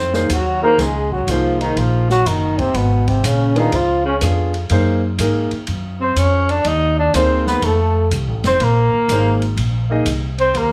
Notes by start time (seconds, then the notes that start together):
Already playing: F2 C4 C5
0.13 A#3 D#4 G#4 C5, snare
0.18 D#3
0.29 D#2 F#3 F#4, hi-hat pedal, ride
0.62 A#3 D#4 G#4 A#4 C5
0.78 C#2 G#3 G#4, snare, ride
1.12 F#3 F#4, kick
1.27 C2 F3 A#3 D#4 F4 G#4 C5, hi-hat pedal, ride
1.61 D#3 D#4, ride
1.76 A#1 F3 F4, ride
2.10 F#3 F#4, snare
2.25 F#1 D#3 D#4, hi-hat pedal, ride
2.59 C3 C4, kick, ride
2.74 G#1 B2 B3, ride
3.08 C3 C4, kick, ride
3.23 A#1 C#3 C#4, hi-hat pedal, ride
3.56 D#3 B3 D4 D#4 F4 G#4, ride
3.72 C#2 F3 F4, ride
4.05 C#3 C#4
4.21 F2 B3 D4 F4 G#4, hi-hat pedal, ride
4.54 ride
4.70 F#2 A#3 D#4 G#4 C5, ride
5.19 G#2 A#3 D#4 G#4 A#4, hi-hat pedal, ride
5.51 muted upright bass stroke, ride
5.67 F#2, ride
6.01 C4 C5
6.16 F2 C#4 C#5, hi-hat pedal, ride
6.49 D4 D5, ride
6.65 D#2 D#4 D#5, ride
6.99 D4 D5
7.14 D2 A#3 C4 D#4 G#4 C5, hi-hat pedal, ride
7.47 B3 B4, snare
7.62 F2 A3 A4, ride
8.11 C2, hi-hat pedal, ride
8.27 A1
8.43 F1 C4 C5, snare, ride
8.60 A#1 A#3 A#4, ride
8.93 muted upright bass stroke
9.08 G#1 A#3 D#4 G#4 C5, hi-hat pedal, ride
9.42 ride
9.56 A#1, ride
9.90 A#3 D#4 G#4 D#5
10.05 C2, hi-hat pedal, ride
10.38 C4 C5, ride
10.54 D#2 A#3 A#4, ride